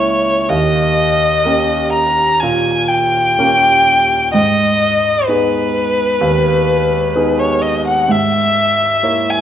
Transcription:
Already playing: grand piano C#2 A#3 C#4 E4, violin C#5
0.49 grand piano D#2, violin D#5
1.45 grand piano A#3 C#4 G4
1.92 violin A#5
2.40 grand piano A#2, violin G#5
2.88 violin G5
3.39 grand piano A#3 C#4 G4
4.33 grand piano G#2, violin D#5
5.26 grand piano B3 D#4 G#4, violin B4
6.21 grand piano D#2
7.16 grand piano B3 D#4 G#4
7.39 violin C#5
7.62 violin D#5
7.87 violin F#5
8.08 grand piano G#2, violin E5
9.03 grand piano A#3 E4 C#5
9.30 violin G#5

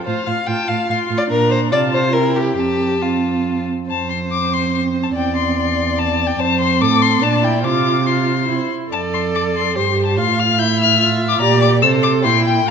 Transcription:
0.05 cello A2, viola F4, violin C5 F5
0.26 cello A2, viola F4, violin F5
0.47 cello A2, viola F4, violin G5 A5
0.67 cello A2, viola F4, violin F5
0.88 cello A2, viola F4, violin F5 C6
1.09 cello A2, viola F4
1.18 violin D5
1.30 cello A#2, viola D4, violin A#4 A#5
1.51 violin C5
1.71 cello C3, viola F4, violin D5 A5
1.93 violin C5
2.13 viola E4, violin A#4 G5
2.36 violin G4
2.56 cello F2, viola C4, violin G4 A5
3.01 viola C4, violin F4
3.88 cello F2, viola C4, violin C5 A5
4.10 violin C6
4.31 violin D6
4.53 violin C6
4.75 violin C6
5.03 violin A5
5.15 cello E2, violin D5 G5
5.36 violin C6
5.56 violin C6
5.99 violin A5
6.27 violin G5
6.39 cello F2, viola C4, violin C5 A5
6.60 violin C6
6.81 cello A2, violin A4 D6
7.01 violin C6
7.21 cello A#2, viola D4, violin D5 A5
7.43 viola E4, violin G5
7.63 cello C3, viola F4, violin C5 D6
8.06 viola F4, violin C6
8.49 cello C3, viola E4
8.92 cello F2, viola A4, violin D5 A5
9.14 violin C6
9.35 violin D6
9.56 violin C6
9.75 cello G2, viola G4, violin C5 C6
10.06 violin A5
10.17 cello A2, viola F4, violin F5 C6
10.39 violin F6
10.58 viola E4, violin E5 G6
10.80 violin F6
10.99 viola F4, violin F6
11.29 violin D6
11.41 cello A#2, viola G4, violin D5 A#5
11.61 violin D6
11.82 cello C3, viola A4, violin C5 E6
12.03 violin D6
12.23 cello A#2, viola E4, violin G5 C6
12.45 violin G5
12.67 viola F4

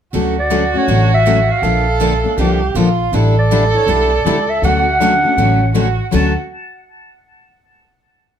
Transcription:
0.13 upright bass D2, steel-string acoustic guitar D3 F#3 A3 C#4 F#4 A4, violin F#4
0.39 clarinet D5
0.50 steel-string acoustic guitar D3 F#3 A3 C#4 F#4 A4
0.74 steel-string acoustic guitar A3 C#4 F#4, clarinet C#5
0.88 upright bass A1, steel-string acoustic guitar D3 F#3 A3 C#4 F#4 A4
1.14 clarinet E5
1.26 steel-string acoustic guitar D3 F#3 A3 C#4 F#4 A4
1.52 clarinet F5
1.62 upright bass A#1, steel-string acoustic guitar D3 F3 A#3 D4 A4, violin A4
2.00 steel-string acoustic guitar D3 F3 A#3 D4 A4
2.24 steel-string acoustic guitar A#3 D4 A4
2.37 upright bass C2, steel-string acoustic guitar D3 F3 A#3 D4 A4, violin G4
2.75 upright bass A#1, steel-string acoustic guitar D3 F3 A#3 D4 A4, violin F4
3.12 upright bass A1, steel-string acoustic guitar D3 G3 D4 E4 A4, violin A4
3.38 clarinet D5
3.51 steel-string acoustic guitar D3 G3 D4 E4 A4
3.74 steel-string acoustic guitar D4 E4 A4, clarinet C#5
3.86 upright bass B1, steel-string acoustic guitar D3 G3 D4 E4 A4, clarinet D5
4.25 upright bass C#2, steel-string acoustic guitar D3 G3 D4 E4 A4
4.49 clarinet E5
4.62 upright bass D2, steel-string acoustic guitar D3 F#3 A3 C#4 F#4 A4, violin F#4, clarinet F#5
5.00 steel-string acoustic guitar D3 F#3 A3 C#4 F#4 A4, violin D4
5.23 steel-string acoustic guitar A3 C#4 F#4
5.37 upright bass A1, steel-string acoustic guitar D3 F#3 A3 C#4 F#4 A4, violin C#4
5.74 steel-string acoustic guitar D3 F#3 A3 C#4 F#4 A4, violin F#4
6.11 upright bass D2, steel-string acoustic guitar D3 F#3 A3 C#4 F#4 A4, violin F#4, clarinet A5

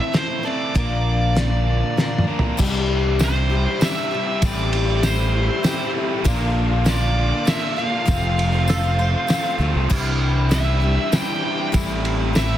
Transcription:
Already playing: overdriven electric guitar A2 E3 C4 E4 A4, twelve-string acoustic guitar C4 E4 C5
0.00 lead electric guitar E5
0.13 twelve-string acoustic guitar A3 C4 E4 C5, lead electric guitar C5, snare, closed hi-hat
0.43 overdriven electric guitar C4 E4 A4, twelve-string acoustic guitar C5, lead electric guitar D5
0.47 overdriven electric guitar A2 E3
0.75 fingered electric bass A#1, overdriven electric guitar A#2 D3 F3 A#3, twelve-string acoustic guitar D4 F4 A#4, kick, closed hi-hat
1.35 twelve-string acoustic guitar A#3 D4 F4 A#4, snare, closed hi-hat
1.97 twelve-string acoustic guitar A#3 D4 F4 A#4, snare
2.18 mid tom
2.27 overdriven electric guitar A#2 D3 F3 A#3 D4 A#4
2.39 floor tom
2.57 fingered electric bass C2, overdriven electric guitar C3 E3 G3 C4, twelve-string acoustic guitar D4 G4, tonewheel organ E4 G4 C5 D5, kick, crash, tambourine
2.74 tambourine
3.03 overdriven electric guitar G3 C4 E4
3.19 overdriven electric guitar C3 E3 G3 C4 E4, twelve-string acoustic guitar D4 G4, snare, ride, tambourine
3.24 lead electric guitar C5
3.50 overdriven electric guitar E3 G3 C4 E4, twelve-string acoustic guitar D4 G4
3.66 overdriven electric guitar G3 C4 E4
3.80 overdriven electric guitar E3 G3 C4 E4, twelve-string acoustic guitar D4 G4, lead electric guitar E5, snare, ride, tambourine
3.95 overdriven electric guitar G3 C4 E4
4.11 overdriven electric guitar E3 G3 C4, twelve-string acoustic guitar D4 G4
4.15 overdriven electric guitar E4
4.27 overdriven electric guitar G3 C4 E4
4.41 fingered electric bass A1, overdriven electric guitar A2 E3 A3 C4 E4, twelve-string acoustic guitar G3 G4, tonewheel organ E4 G4 A4 C5, lead electric guitar D5, kick, ride, tambourine
4.58 tambourine
4.73 ride
4.87 overdriven electric guitar A3 C4 E4
5.02 overdriven electric guitar A2 E3 A3 C4 E4, twelve-string acoustic guitar G3, lead electric guitar C5, snare, ride, tambourine
5.06 twelve-string acoustic guitar G4
5.33 overdriven electric guitar E3 A3 C4 E4
5.47 overdriven electric guitar C4 E4
5.51 overdriven electric guitar A3
5.63 overdriven electric guitar E3 A3 C4 E4, twelve-string acoustic guitar G3 G4, snare, ride, tambourine
5.78 overdriven electric guitar A3 C4 E4
5.94 overdriven electric guitar E3 A3 C4 E4
6.10 overdriven electric guitar A3 C4 E4
6.25 fingered electric bass A#1, overdriven electric guitar A#2 D3 A#3 D4 F4, tonewheel organ D4 F4 A#4 D5, kick, ride, tambourine
6.41 tambourine
6.71 overdriven electric guitar A#3 D4 F4
6.86 overdriven electric guitar A#2 D3 A#3 D4 F4, lead electric guitar D5, snare, ride, tambourine
7.16 overdriven electric guitar D3 A#3 D4 F4
7.31 overdriven electric guitar A#3 D4 F4
7.46 overdriven electric guitar D3 A#3 D4 F4, lead electric guitar E5, snare, ride, tambourine
7.61 overdriven electric guitar A#3 D4 F4
7.77 overdriven electric guitar D3 A#3 D4 F4, lead electric guitar F5
7.92 overdriven electric guitar A#3 D4 F4
8.07 fingered electric bass F1, overdriven electric guitar F2 C3 F3 A3 C4, tonewheel organ C4 F4 A4 C5, twelve-string acoustic guitar F4, kick, ride, tambourine
8.23 tambourine
8.38 ride, tambourine
8.52 overdriven electric guitar A3 C4 F4, tambourine
8.56 overdriven electric guitar F3
8.68 overdriven electric guitar F2 C3 F3 A3 C4 F4, mandolin A4, snare, ride, tambourine
8.84 mandolin C5
8.98 overdriven electric guitar F3 A3 C4 F4, mandolin C5, tambourine
9.14 overdriven electric guitar F3 A3 C4 F4
9.28 overdriven electric guitar F3 A3 C4, snare, ride, tambourine
9.32 overdriven electric guitar F4
9.43 overdriven electric guitar A3 C4 F4
9.48 overdriven electric guitar F3
9.59 fingered electric bass D2, overdriven electric guitar F3 A3 C4, twelve-string acoustic guitar F4
9.63 overdriven electric guitar F4
9.74 fingered electric bass C2, overdriven electric guitar F3 A3 C4 F4
9.88 fingered electric bass C2, overdriven electric guitar C3 E3 G3 C4 E4, tonewheel organ D4 E4 G4 C5, twelve-string acoustic guitar D4, kick, tambourine, crash
10.05 tambourine
10.35 overdriven electric guitar G3 C4 E4
10.51 overdriven electric guitar C3 E3 G3 C4 E4, twelve-string acoustic guitar D4, lead electric guitar E5, snare, ride, tambourine
10.81 overdriven electric guitar E3 G3 C4 E4, twelve-string acoustic guitar D4
10.96 overdriven electric guitar G3 C4 E4
11.12 overdriven electric guitar E3 G3 C4 E4, twelve-string acoustic guitar D4, lead electric guitar G5, snare, ride, tambourine
11.27 overdriven electric guitar G3 C4 E4
11.42 overdriven electric guitar E3 G3 C4 E4
11.57 overdriven electric guitar G3 C4 E4
11.72 fingered electric bass A1, overdriven electric guitar A2 E3 A3 C4, twelve-string acoustic guitar G3 E4, tonewheel organ C4 E4 G4 A4, kick, ride, tambourine
11.90 tambourine
12.05 ride
12.18 overdriven electric guitar A3 C4 E4
12.33 overdriven electric guitar A2 E3 A3 C4 E4, twelve-string acoustic guitar G3, lead electric guitar E5, snare, ride, tambourine

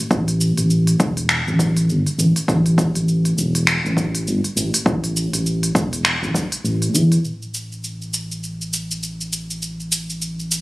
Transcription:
0.11 analog synth bass A1, kick, shaker
0.28 open hi-hat, shaker
0.41 shaker
0.57 analog synth bass A1, open hi-hat, shaker
0.70 shaker
0.87 open hi-hat, shaker
1.00 analog synth bass E1, kick, shaker
1.17 open hi-hat, shaker
1.29 finger snap, shaker
1.47 analog synth bass A1, shaker
1.59 kick, shaker
1.77 open hi-hat, shaker
1.89 analog synth bass G1, shaker
2.06 open hi-hat, shaker
2.19 analog synth bass A1, shaker
2.36 open hi-hat, shaker
2.48 analog synth bass A1, kick, shaker
2.66 open hi-hat, shaker
2.78 kick, shaker
2.95 analog synth bass A1, open hi-hat, shaker
3.08 shaker
3.25 open hi-hat, shaker
3.37 analog synth bass E1, shaker
3.55 open hi-hat, shaker
3.67 finger snap, shaker
3.85 analog synth bass A1, shaker
3.97 kick, shaker
4.15 open hi-hat, shaker
4.27 analog synth bass G1, shaker
4.44 open hi-hat, shaker
4.56 analog synth bass A1, shaker
4.74 open hi-hat, shaker
4.86 analog synth bass A1, kick, shaker
5.04 open hi-hat, shaker
5.16 shaker
5.33 analog synth bass A1, open hi-hat, shaker
5.46 shaker
5.63 open hi-hat, shaker
5.75 analog synth bass E1, kick, shaker
5.93 open hi-hat, shaker
6.05 finger snap, shaker
6.22 analog synth bass A1, shaker
6.34 kick, shaker
6.52 open hi-hat, shaker
6.64 analog synth bass A1, shaker
6.82 open hi-hat, shaker
6.94 analog synth bass E2, shaker
7.12 open hi-hat, shaker
7.24 analog synth bass A1, shaker
7.42 shaker
7.54 shaker
7.72 shaker
7.84 shaker
8.02 shaker
8.14 shaker
8.31 shaker
8.43 shaker
8.61 shaker
8.73 shaker
8.91 shaker
9.03 shaker
9.21 shaker
9.33 shaker
9.50 shaker
9.62 shaker
9.80 shaker
9.92 shaker
10.10 shaker
10.22 shaker
10.39 shaker
10.51 shaker

